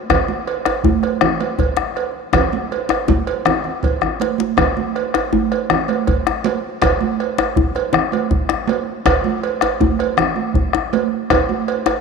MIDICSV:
0, 0, Header, 1, 4, 480
1, 0, Start_track
1, 0, Tempo, 373599
1, 123, Time_signature, 12, 3, 24, 8
1, 15427, End_track
2, 0, Start_track
2, 0, Title_t, "Bombo"
2, 130, Note_on_c, 9, 37, 87
2, 130, Note_on_c, 9, 43, 88
2, 259, Note_off_c, 9, 37, 0
2, 259, Note_off_c, 9, 43, 0
2, 613, Note_on_c, 9, 37, 29
2, 742, Note_off_c, 9, 37, 0
2, 841, Note_on_c, 9, 37, 68
2, 970, Note_off_c, 9, 37, 0
2, 1076, Note_on_c, 9, 43, 93
2, 1205, Note_off_c, 9, 43, 0
2, 1322, Note_on_c, 9, 37, 30
2, 1451, Note_off_c, 9, 37, 0
2, 1555, Note_on_c, 9, 37, 87
2, 1683, Note_off_c, 9, 37, 0
2, 1795, Note_on_c, 9, 37, 31
2, 1924, Note_off_c, 9, 37, 0
2, 2039, Note_on_c, 9, 43, 89
2, 2168, Note_off_c, 9, 43, 0
2, 2277, Note_on_c, 9, 37, 67
2, 2405, Note_off_c, 9, 37, 0
2, 2518, Note_on_c, 9, 37, 29
2, 2647, Note_off_c, 9, 37, 0
2, 2999, Note_on_c, 9, 37, 86
2, 2999, Note_on_c, 9, 43, 88
2, 3127, Note_off_c, 9, 37, 0
2, 3127, Note_off_c, 9, 43, 0
2, 3729, Note_on_c, 9, 37, 64
2, 3858, Note_off_c, 9, 37, 0
2, 3967, Note_on_c, 9, 43, 92
2, 4096, Note_off_c, 9, 43, 0
2, 4441, Note_on_c, 9, 37, 88
2, 4570, Note_off_c, 9, 37, 0
2, 4692, Note_on_c, 9, 37, 29
2, 4820, Note_off_c, 9, 37, 0
2, 4922, Note_on_c, 9, 43, 89
2, 5050, Note_off_c, 9, 43, 0
2, 5162, Note_on_c, 9, 37, 67
2, 5291, Note_off_c, 9, 37, 0
2, 5881, Note_on_c, 9, 37, 81
2, 5881, Note_on_c, 9, 43, 86
2, 6009, Note_off_c, 9, 37, 0
2, 6009, Note_off_c, 9, 43, 0
2, 6366, Note_on_c, 9, 37, 25
2, 6494, Note_off_c, 9, 37, 0
2, 6606, Note_on_c, 9, 37, 65
2, 6735, Note_off_c, 9, 37, 0
2, 7087, Note_on_c, 9, 37, 29
2, 7216, Note_off_c, 9, 37, 0
2, 7322, Note_on_c, 9, 37, 90
2, 7450, Note_off_c, 9, 37, 0
2, 7562, Note_on_c, 9, 37, 30
2, 7690, Note_off_c, 9, 37, 0
2, 7810, Note_on_c, 9, 43, 87
2, 7939, Note_off_c, 9, 43, 0
2, 8052, Note_on_c, 9, 37, 69
2, 8180, Note_off_c, 9, 37, 0
2, 8296, Note_on_c, 9, 37, 28
2, 8424, Note_off_c, 9, 37, 0
2, 8766, Note_on_c, 9, 37, 85
2, 8766, Note_on_c, 9, 43, 87
2, 8894, Note_off_c, 9, 37, 0
2, 8894, Note_off_c, 9, 43, 0
2, 9251, Note_on_c, 9, 37, 26
2, 9380, Note_off_c, 9, 37, 0
2, 9491, Note_on_c, 9, 37, 71
2, 9620, Note_off_c, 9, 37, 0
2, 9716, Note_on_c, 9, 43, 97
2, 9845, Note_off_c, 9, 43, 0
2, 9965, Note_on_c, 9, 37, 28
2, 10093, Note_off_c, 9, 37, 0
2, 10205, Note_on_c, 9, 37, 88
2, 10333, Note_off_c, 9, 37, 0
2, 10444, Note_on_c, 9, 37, 33
2, 10572, Note_off_c, 9, 37, 0
2, 10677, Note_on_c, 9, 43, 93
2, 10805, Note_off_c, 9, 43, 0
2, 10909, Note_on_c, 9, 37, 74
2, 11038, Note_off_c, 9, 37, 0
2, 11155, Note_on_c, 9, 37, 29
2, 11284, Note_off_c, 9, 37, 0
2, 11644, Note_on_c, 9, 37, 91
2, 11644, Note_on_c, 9, 43, 90
2, 11773, Note_off_c, 9, 37, 0
2, 11773, Note_off_c, 9, 43, 0
2, 12349, Note_on_c, 9, 37, 75
2, 12478, Note_off_c, 9, 37, 0
2, 12597, Note_on_c, 9, 43, 94
2, 12726, Note_off_c, 9, 43, 0
2, 12838, Note_on_c, 9, 37, 29
2, 12966, Note_off_c, 9, 37, 0
2, 13075, Note_on_c, 9, 37, 92
2, 13204, Note_off_c, 9, 37, 0
2, 13314, Note_on_c, 9, 37, 31
2, 13443, Note_off_c, 9, 37, 0
2, 13544, Note_on_c, 9, 43, 98
2, 13672, Note_off_c, 9, 43, 0
2, 13791, Note_on_c, 9, 37, 72
2, 13919, Note_off_c, 9, 37, 0
2, 14045, Note_on_c, 9, 37, 26
2, 14174, Note_off_c, 9, 37, 0
2, 14522, Note_on_c, 9, 37, 86
2, 14522, Note_on_c, 9, 43, 84
2, 14650, Note_off_c, 9, 37, 0
2, 14650, Note_off_c, 9, 43, 0
2, 14763, Note_on_c, 9, 37, 27
2, 14891, Note_off_c, 9, 37, 0
2, 15009, Note_on_c, 9, 37, 27
2, 15138, Note_off_c, 9, 37, 0
2, 15243, Note_on_c, 9, 37, 69
2, 15371, Note_off_c, 9, 37, 0
2, 15427, End_track
3, 0, Start_track
3, 0, Title_t, "Djembe"
3, 127, Note_on_c, 9, 62, 23
3, 127, Note_on_c, 9, 63, 71
3, 127, Note_on_c, 9, 64, 73
3, 255, Note_off_c, 9, 62, 0
3, 255, Note_off_c, 9, 63, 0
3, 255, Note_off_c, 9, 64, 0
3, 847, Note_on_c, 9, 62, 57
3, 847, Note_on_c, 9, 63, 57
3, 976, Note_off_c, 9, 62, 0
3, 976, Note_off_c, 9, 63, 0
3, 1085, Note_on_c, 9, 64, 71
3, 1214, Note_off_c, 9, 64, 0
3, 1321, Note_on_c, 9, 62, 22
3, 1449, Note_off_c, 9, 62, 0
3, 1558, Note_on_c, 9, 63, 75
3, 1687, Note_off_c, 9, 63, 0
3, 2037, Note_on_c, 9, 62, 21
3, 2037, Note_on_c, 9, 64, 65
3, 2166, Note_off_c, 9, 62, 0
3, 2166, Note_off_c, 9, 64, 0
3, 2269, Note_on_c, 9, 62, 55
3, 2269, Note_on_c, 9, 63, 55
3, 2397, Note_off_c, 9, 62, 0
3, 2397, Note_off_c, 9, 63, 0
3, 2992, Note_on_c, 9, 63, 67
3, 2992, Note_on_c, 9, 64, 68
3, 3121, Note_off_c, 9, 63, 0
3, 3121, Note_off_c, 9, 64, 0
3, 3241, Note_on_c, 9, 62, 21
3, 3369, Note_off_c, 9, 62, 0
3, 3714, Note_on_c, 9, 62, 58
3, 3714, Note_on_c, 9, 63, 54
3, 3843, Note_off_c, 9, 62, 0
3, 3843, Note_off_c, 9, 63, 0
3, 3959, Note_on_c, 9, 64, 66
3, 4087, Note_off_c, 9, 64, 0
3, 4210, Note_on_c, 9, 62, 21
3, 4338, Note_off_c, 9, 62, 0
3, 4452, Note_on_c, 9, 63, 67
3, 4581, Note_off_c, 9, 63, 0
3, 4930, Note_on_c, 9, 64, 38
3, 5058, Note_off_c, 9, 64, 0
3, 5178, Note_on_c, 9, 64, 46
3, 5306, Note_off_c, 9, 64, 0
3, 5416, Note_on_c, 9, 62, 51
3, 5545, Note_off_c, 9, 62, 0
3, 5653, Note_on_c, 9, 62, 56
3, 5782, Note_off_c, 9, 62, 0
3, 5882, Note_on_c, 9, 62, 20
3, 5882, Note_on_c, 9, 63, 63
3, 5882, Note_on_c, 9, 64, 62
3, 6011, Note_off_c, 9, 62, 0
3, 6011, Note_off_c, 9, 63, 0
3, 6011, Note_off_c, 9, 64, 0
3, 6613, Note_on_c, 9, 62, 49
3, 6613, Note_on_c, 9, 63, 54
3, 6741, Note_off_c, 9, 62, 0
3, 6741, Note_off_c, 9, 63, 0
3, 6844, Note_on_c, 9, 64, 62
3, 6972, Note_off_c, 9, 64, 0
3, 7322, Note_on_c, 9, 63, 68
3, 7450, Note_off_c, 9, 63, 0
3, 7806, Note_on_c, 9, 62, 22
3, 7806, Note_on_c, 9, 64, 68
3, 7935, Note_off_c, 9, 62, 0
3, 7935, Note_off_c, 9, 64, 0
3, 8054, Note_on_c, 9, 62, 54
3, 8054, Note_on_c, 9, 63, 55
3, 8182, Note_off_c, 9, 62, 0
3, 8182, Note_off_c, 9, 63, 0
3, 8769, Note_on_c, 9, 62, 23
3, 8769, Note_on_c, 9, 63, 69
3, 8769, Note_on_c, 9, 64, 74
3, 8898, Note_off_c, 9, 62, 0
3, 8898, Note_off_c, 9, 63, 0
3, 8898, Note_off_c, 9, 64, 0
3, 9487, Note_on_c, 9, 62, 58
3, 9487, Note_on_c, 9, 63, 57
3, 9616, Note_off_c, 9, 62, 0
3, 9616, Note_off_c, 9, 63, 0
3, 9725, Note_on_c, 9, 64, 72
3, 9854, Note_off_c, 9, 64, 0
3, 9957, Note_on_c, 9, 62, 22
3, 10085, Note_off_c, 9, 62, 0
3, 10186, Note_on_c, 9, 63, 66
3, 10315, Note_off_c, 9, 63, 0
3, 10674, Note_on_c, 9, 62, 21
3, 10674, Note_on_c, 9, 64, 67
3, 10802, Note_off_c, 9, 62, 0
3, 10802, Note_off_c, 9, 64, 0
3, 10915, Note_on_c, 9, 62, 55
3, 10915, Note_on_c, 9, 63, 54
3, 11043, Note_off_c, 9, 62, 0
3, 11043, Note_off_c, 9, 63, 0
3, 11636, Note_on_c, 9, 62, 21
3, 11636, Note_on_c, 9, 63, 70
3, 11636, Note_on_c, 9, 64, 66
3, 11764, Note_off_c, 9, 62, 0
3, 11764, Note_off_c, 9, 63, 0
3, 11764, Note_off_c, 9, 64, 0
3, 12361, Note_on_c, 9, 62, 56
3, 12361, Note_on_c, 9, 63, 55
3, 12490, Note_off_c, 9, 62, 0
3, 12490, Note_off_c, 9, 63, 0
3, 12604, Note_on_c, 9, 64, 71
3, 12732, Note_off_c, 9, 64, 0
3, 12849, Note_on_c, 9, 62, 21
3, 12977, Note_off_c, 9, 62, 0
3, 13086, Note_on_c, 9, 63, 70
3, 13214, Note_off_c, 9, 63, 0
3, 13558, Note_on_c, 9, 62, 19
3, 13558, Note_on_c, 9, 64, 64
3, 13687, Note_off_c, 9, 62, 0
3, 13687, Note_off_c, 9, 64, 0
3, 13806, Note_on_c, 9, 62, 52
3, 13806, Note_on_c, 9, 63, 55
3, 13934, Note_off_c, 9, 62, 0
3, 13934, Note_off_c, 9, 63, 0
3, 14523, Note_on_c, 9, 63, 62
3, 14523, Note_on_c, 9, 64, 63
3, 14652, Note_off_c, 9, 63, 0
3, 14652, Note_off_c, 9, 64, 0
3, 15237, Note_on_c, 9, 62, 54
3, 15237, Note_on_c, 9, 63, 57
3, 15365, Note_off_c, 9, 62, 0
3, 15365, Note_off_c, 9, 63, 0
3, 15427, End_track
4, 0, Start_track
4, 0, Title_t, "Drums"
4, 130, Note_on_c, 9, 63, 21
4, 130, Note_on_c, 9, 64, 71
4, 131, Note_on_c, 9, 56, 61
4, 259, Note_off_c, 9, 63, 0
4, 259, Note_off_c, 9, 64, 0
4, 260, Note_off_c, 9, 56, 0
4, 364, Note_on_c, 9, 63, 53
4, 492, Note_off_c, 9, 63, 0
4, 610, Note_on_c, 9, 56, 45
4, 739, Note_off_c, 9, 56, 0
4, 846, Note_on_c, 9, 56, 48
4, 974, Note_off_c, 9, 56, 0
4, 1088, Note_on_c, 9, 63, 71
4, 1216, Note_off_c, 9, 63, 0
4, 1330, Note_on_c, 9, 56, 43
4, 1458, Note_off_c, 9, 56, 0
4, 1563, Note_on_c, 9, 64, 76
4, 1692, Note_off_c, 9, 64, 0
4, 1804, Note_on_c, 9, 56, 41
4, 1806, Note_on_c, 9, 63, 58
4, 1933, Note_off_c, 9, 56, 0
4, 1934, Note_off_c, 9, 63, 0
4, 2050, Note_on_c, 9, 56, 45
4, 2179, Note_off_c, 9, 56, 0
4, 2526, Note_on_c, 9, 56, 42
4, 2655, Note_off_c, 9, 56, 0
4, 3005, Note_on_c, 9, 63, 26
4, 3005, Note_on_c, 9, 64, 82
4, 3008, Note_on_c, 9, 56, 58
4, 3134, Note_off_c, 9, 63, 0
4, 3134, Note_off_c, 9, 64, 0
4, 3137, Note_off_c, 9, 56, 0
4, 3250, Note_on_c, 9, 63, 64
4, 3378, Note_off_c, 9, 63, 0
4, 3489, Note_on_c, 9, 63, 25
4, 3496, Note_on_c, 9, 56, 45
4, 3618, Note_off_c, 9, 63, 0
4, 3624, Note_off_c, 9, 56, 0
4, 3736, Note_on_c, 9, 56, 43
4, 3864, Note_off_c, 9, 56, 0
4, 3963, Note_on_c, 9, 63, 74
4, 4092, Note_off_c, 9, 63, 0
4, 4204, Note_on_c, 9, 56, 44
4, 4333, Note_off_c, 9, 56, 0
4, 4437, Note_on_c, 9, 63, 24
4, 4437, Note_on_c, 9, 64, 82
4, 4565, Note_off_c, 9, 63, 0
4, 4565, Note_off_c, 9, 64, 0
4, 4678, Note_on_c, 9, 64, 42
4, 4807, Note_off_c, 9, 64, 0
4, 4916, Note_on_c, 9, 64, 44
4, 4934, Note_on_c, 9, 56, 43
4, 5045, Note_off_c, 9, 64, 0
4, 5063, Note_off_c, 9, 56, 0
4, 5157, Note_on_c, 9, 64, 49
4, 5285, Note_off_c, 9, 64, 0
4, 5394, Note_on_c, 9, 63, 57
4, 5410, Note_on_c, 9, 56, 43
4, 5522, Note_off_c, 9, 63, 0
4, 5538, Note_off_c, 9, 56, 0
4, 5630, Note_on_c, 9, 63, 52
4, 5759, Note_off_c, 9, 63, 0
4, 5871, Note_on_c, 9, 63, 25
4, 5871, Note_on_c, 9, 64, 71
4, 5881, Note_on_c, 9, 56, 52
4, 5999, Note_off_c, 9, 63, 0
4, 5999, Note_off_c, 9, 64, 0
4, 6009, Note_off_c, 9, 56, 0
4, 6125, Note_on_c, 9, 63, 55
4, 6254, Note_off_c, 9, 63, 0
4, 6371, Note_on_c, 9, 56, 41
4, 6500, Note_off_c, 9, 56, 0
4, 6609, Note_on_c, 9, 56, 41
4, 6738, Note_off_c, 9, 56, 0
4, 6841, Note_on_c, 9, 63, 67
4, 6970, Note_off_c, 9, 63, 0
4, 7089, Note_on_c, 9, 56, 43
4, 7218, Note_off_c, 9, 56, 0
4, 7324, Note_on_c, 9, 64, 75
4, 7452, Note_off_c, 9, 64, 0
4, 7558, Note_on_c, 9, 63, 58
4, 7567, Note_on_c, 9, 56, 41
4, 7686, Note_off_c, 9, 63, 0
4, 7695, Note_off_c, 9, 56, 0
4, 7803, Note_on_c, 9, 56, 43
4, 7931, Note_off_c, 9, 56, 0
4, 8279, Note_on_c, 9, 63, 73
4, 8295, Note_on_c, 9, 56, 45
4, 8408, Note_off_c, 9, 63, 0
4, 8424, Note_off_c, 9, 56, 0
4, 8757, Note_on_c, 9, 63, 25
4, 8757, Note_on_c, 9, 64, 78
4, 8780, Note_on_c, 9, 56, 60
4, 8886, Note_off_c, 9, 63, 0
4, 8886, Note_off_c, 9, 64, 0
4, 8909, Note_off_c, 9, 56, 0
4, 9001, Note_on_c, 9, 63, 60
4, 9129, Note_off_c, 9, 63, 0
4, 9253, Note_on_c, 9, 56, 43
4, 9382, Note_off_c, 9, 56, 0
4, 9496, Note_on_c, 9, 56, 43
4, 9625, Note_off_c, 9, 56, 0
4, 9969, Note_on_c, 9, 56, 48
4, 10097, Note_off_c, 9, 56, 0
4, 10189, Note_on_c, 9, 64, 76
4, 10317, Note_off_c, 9, 64, 0
4, 10435, Note_on_c, 9, 63, 58
4, 10449, Note_on_c, 9, 56, 43
4, 10563, Note_off_c, 9, 63, 0
4, 10578, Note_off_c, 9, 56, 0
4, 11144, Note_on_c, 9, 63, 74
4, 11168, Note_on_c, 9, 56, 47
4, 11272, Note_off_c, 9, 63, 0
4, 11297, Note_off_c, 9, 56, 0
4, 11636, Note_on_c, 9, 63, 24
4, 11636, Note_on_c, 9, 64, 79
4, 11649, Note_on_c, 9, 56, 66
4, 11764, Note_off_c, 9, 63, 0
4, 11764, Note_off_c, 9, 64, 0
4, 11777, Note_off_c, 9, 56, 0
4, 11875, Note_on_c, 9, 63, 58
4, 12004, Note_off_c, 9, 63, 0
4, 12122, Note_on_c, 9, 56, 46
4, 12251, Note_off_c, 9, 56, 0
4, 12369, Note_on_c, 9, 56, 49
4, 12498, Note_off_c, 9, 56, 0
4, 12598, Note_on_c, 9, 63, 67
4, 12727, Note_off_c, 9, 63, 0
4, 12848, Note_on_c, 9, 56, 51
4, 12976, Note_off_c, 9, 56, 0
4, 13068, Note_on_c, 9, 64, 73
4, 13197, Note_off_c, 9, 64, 0
4, 13308, Note_on_c, 9, 63, 50
4, 13436, Note_off_c, 9, 63, 0
4, 14042, Note_on_c, 9, 63, 66
4, 14049, Note_on_c, 9, 56, 47
4, 14170, Note_off_c, 9, 63, 0
4, 14177, Note_off_c, 9, 56, 0
4, 14526, Note_on_c, 9, 64, 69
4, 14529, Note_on_c, 9, 56, 67
4, 14655, Note_off_c, 9, 64, 0
4, 14658, Note_off_c, 9, 56, 0
4, 14763, Note_on_c, 9, 63, 49
4, 14891, Note_off_c, 9, 63, 0
4, 15009, Note_on_c, 9, 56, 51
4, 15138, Note_off_c, 9, 56, 0
4, 15250, Note_on_c, 9, 56, 48
4, 15378, Note_off_c, 9, 56, 0
4, 15427, End_track
0, 0, End_of_file